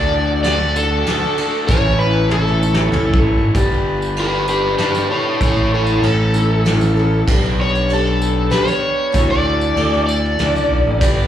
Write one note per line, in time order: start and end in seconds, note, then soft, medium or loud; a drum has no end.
0.00 1.02 D2 loud
0.00 0.11 D3 loud
0.00 0.45 D3 medium
0.00 0.12 A3 loud
0.00 0.45 A3 medium
0.00 0.12 D4 loud
0.00 0.45 D4 medium
0.00 0.13 F#4 loud
0.00 0.45 F#4 medium
0.00 0.48 A4 medium
0.00 3.51 A4 medium
0.00 0.42 D5 loud
0.00 1.67 D5 medium
0.00 1.64 F#5 medium
0.00 1.66 D6 medium
0.12 0.43 D3 medium
0.12 0.44 A3 medium
0.12 0.44 D4 medium
0.12 0.44 F#4 medium
0.44 0.74 D3 medium
0.44 0.59 A3 medium
0.44 0.76 A3 medium
0.44 0.58 D4 medium
0.44 0.76 D4 medium
0.44 0.58 F#4 loud
0.44 0.76 D5 loud
0.44 snare medium
0.44 ride medium
0.48 0.77 F#4 medium
0.48 0.75 A4 medium
0.59 0.75 A3 medium
0.59 0.75 D4 medium
0.59 0.75 F#4 medium
0.76 1.08 D4 soft
0.76 1.08 F#4 medium
0.76 1.07 A4 medium
0.76 1.67 A4 medium
0.76 muted overdriven electric guitar stroke soft
0.76 tambourine loud
0.91 1.22 A3 medium
0.91 1.22 D4 medium
0.91 1.20 F#4 medium
1.06 1.69 A3 medium
1.06 1.70 D4 medium
1.06 1.70 F#4 medium
1.06 snare medium
1.06 ride medium
1.11 1.71 A4 medium
1.22 1.38 A3 medium
1.22 1.38 D4 medium
1.22 1.39 F#4 medium
1.22 tambourine soft
1.38 1.67 D3 medium
1.38 1.67 A3 medium
1.38 1.68 D4 medium
1.38 1.68 F#4 medium
1.38 ride medium
1.38 tambourine soft
1.66 2.88 A1 loud
1.66 2.28 A2 medium
1.66 1.98 E3 medium
1.66 1.99 A3 loud
1.66 3.52 C#5 medium
1.66 1.97 C#5 loud
1.66 3.52 E5 medium
1.66 3.51 C#6 medium
1.66 kick loud
1.66 ride medium
1.66 tambourine medium
1.70 2.31 A2 medium
1.70 2.31 E3 medium
1.70 2.29 A3 medium
1.70 2.00 C#4 loud
1.70 2.30 C#4 medium
1.70 2.01 E4 loud
1.70 2.32 E4 medium
1.70 2.33 A4 medium
1.86 tambourine soft
1.99 2.29 E3 medium
1.99 2.29 A3 medium
1.99 2.30 C#4 medium
1.99 2.30 E4 medium
1.99 2.31 B4 medium
2.29 2.76 A2 medium
2.29 2.59 E3 medium
2.29 2.61 A3 medium
2.29 2.46 A3 loud
2.29 2.46 C#4 loud
2.29 2.62 C#4 medium
2.29 2.45 E4 medium
2.29 2.62 E4 medium
2.29 3.20 A4 medium
2.29 high tom medium
2.34 2.61 A4 medium
2.46 2.60 A3 medium
2.46 2.60 C#4 medium
2.46 2.60 E4 medium
2.46 tambourine soft
2.61 2.93 E4 medium
2.61 2.93 A4 medium
2.61 muted overdriven electric guitar stroke soft
2.61 tambourine medium
2.65 2.91 A3 soft
2.65 2.93 C#4 soft
2.74 3.07 C#4 medium
2.74 3.06 E4 medium
2.74 snare medium
2.78 3.08 A3 medium
2.92 3.06 C#2 medium
2.92 3.54 A3 medium
2.92 3.55 C#4 medium
2.92 3.56 E4 medium
2.92 mid tom medium
2.96 3.56 A4 medium
3.07 3.22 B1 medium
3.07 3.22 A3 medium
3.07 3.23 C#4 medium
3.07 3.24 E4 medium
3.14 kick medium
3.22 3.37 A1 medium
3.22 3.52 E3 medium
3.22 3.53 A3 medium
3.22 3.53 C#4 medium
3.22 3.53 E4 medium
3.38 3.52 G#1 medium
3.54 4.75 G1 medium
3.54 5.39 G2 medium
3.54 5.39 D3 medium
3.54 4.17 G3 medium
3.54 5.40 G3 medium
3.54 5.40 B3 medium
3.54 5.39 D4 medium
3.54 4.17 D4 medium
3.54 5.40 D4 medium
3.54 5.39 G4 medium
3.54 4.18 G4 medium
3.54 5.40 G4 medium
3.54 5.39 B4 medium
3.54 4.18 B4 medium
3.54 5.39 B5 medium
3.54 kick loud
3.54 ride medium
3.54 tambourine medium
3.72 tambourine soft
4.02 tambourine medium
4.16 4.48 G3 medium
4.16 4.49 D4 medium
4.16 4.48 G4 medium
4.16 4.49 G4 medium
4.16 ride medium
4.21 4.48 B4 medium
4.48 4.77 G4 medium
4.48 4.80 G4 soft
4.48 4.79 B4 soft
4.48 4.78 B4 medium
4.48 tambourine loud
4.52 4.80 D4 soft
4.78 5.41 G3 medium
4.78 5.42 D4 medium
4.78 5.07 G4 medium
4.78 5.09 B4 medium
4.78 snare medium
4.78 ride medium
4.82 5.43 G4 medium
4.82 5.43 B4 medium
4.95 tambourine medium
5.11 5.39 A4 medium
5.11 5.41 C#5 medium
5.40 5.99 A1 medium
5.40 7.26 A2 medium
5.40 6.04 A2 medium
5.40 6.04 E3 medium
5.40 7.26 A3 medium
5.40 6.02 A3 medium
5.40 7.26 C#4 medium
5.40 6.03 C#4 medium
5.40 7.27 E4 medium
5.40 6.04 E4 medium
5.40 7.26 A4 medium
5.40 5.71 A4 medium
5.40 7.27 A4 medium
5.40 6.05 A4 medium
5.40 7.26 C#5 medium
5.40 5.72 C#5 medium
5.40 7.26 E5 medium
5.40 7.26 C#6 medium
5.40 kick loud
5.40 ride medium
5.40 tambourine loud
5.57 tambourine soft
5.74 6.02 A4 medium
5.74 6.04 C#5 medium
5.87 tambourine medium
6.02 7.23 A1 loud
6.02 6.34 A3 medium
6.02 6.35 C#4 medium
6.02 6.34 E4 medium
6.02 7.25 A4 medium
6.02 ride medium
6.06 6.33 A4 medium
6.34 6.64 A3 soft
6.34 6.65 C#4 soft
6.34 6.66 E4 soft
6.34 6.65 A4 medium
6.34 tambourine medium
6.65 6.96 A3 medium
6.65 6.97 C#4 medium
6.65 6.97 E4 medium
6.65 6.95 A4 medium
6.65 snare medium
6.65 ride medium
6.81 tambourine medium
6.97 7.27 A3 soft
6.97 7.28 C#4 medium
6.97 7.28 E4 medium
6.97 7.28 A4 medium
7.27 8.48 B1 medium
7.27 9.13 B3 medium
7.27 7.88 B3 medium
7.27 9.14 D4 medium
7.27 7.89 D4 medium
7.27 9.13 D4 medium
7.27 7.90 G4 medium
7.27 9.14 G4 medium
7.27 9.13 B4 medium
7.27 7.90 B4 loud
7.27 9.14 B4 loud
7.27 9.13 G5 medium
7.27 kick loud
7.27 tambourine medium
7.27 crash loud
7.45 tambourine soft
7.61 7.90 C#5 medium
7.75 tambourine medium
7.89 8.49 B3 medium
7.89 8.52 D4 medium
7.89 8.52 G4 medium
7.89 8.53 B4 medium
7.89 ride medium
7.93 8.52 A4 medium
8.22 tambourine medium
8.51 9.13 B3 medium
8.51 9.14 D4 medium
8.51 9.14 G4 medium
8.51 8.68 B4 medium
8.51 9.15 B4 medium
8.51 snare medium
8.51 ride medium
8.68 9.28 C#5 medium
8.68 tambourine medium
9.12 9.73 D2 loud
9.12 9.76 D3 medium
9.12 10.99 D3 medium
9.12 9.75 A3 medium
9.12 11.00 D4 medium
9.12 9.76 E4 medium
9.12 9.77 F#4 medium
9.12 11.00 F#4 medium
9.12 10.99 A4 medium
9.12 9.77 A4 medium
9.12 11.01 A4 loud
9.12 10.99 E5 medium
9.12 10.99 F#5 medium
9.12 kick loud
9.12 ride medium
9.12 tambourine loud
9.31 10.05 D5 loud
9.61 tambourine medium
9.76 10.35 D2 loud
9.76 10.37 A3 medium
9.76 10.39 E4 medium
9.76 10.39 F#4 medium
9.76 10.40 A4 medium
9.76 ride medium
9.76 tambourine soft
9.94 tambourine soft
10.07 11.27 D5 medium
10.07 tambourine loud
10.25 tambourine soft
10.39 10.54 D2 medium
10.39 11.01 A3 medium
10.39 11.02 E4 medium
10.39 11.02 F#4 medium
10.39 11.03 A4 medium
10.39 snare medium
10.39 ride medium
10.54 10.69 C#2 medium
10.54 tambourine medium
10.71 10.85 B1 medium
10.87 11.00 A1 medium
11.00 11.27 G1 medium
11.00 11.27 G3 medium
11.00 11.27 B3 medium
11.00 11.27 D4 loud
11.00 11.27 D4 medium
11.00 11.27 G4 medium
11.00 11.27 B4 medium
11.00 11.27 D5 medium
11.00 11.27 G5 medium
11.00 kick loud
11.00 tambourine medium
11.00 crash medium
11.04 11.27 B4 medium
11.19 tambourine soft